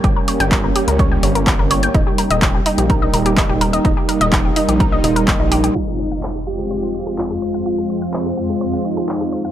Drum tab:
HH |x-oxx-oxx-oxx-ox|x-oxx-oxx-oxx-ox|x-oxx-oxx-oxx-ox|----------------|
CP |----x-------x---|----x-------x---|----x-------x---|----x-------x---|
BD |o---o---o---o---|o---o---o---o---|o---o---o---o---|----------------|

HH |----------------|
CP |----x-------x---|
BD |----------------|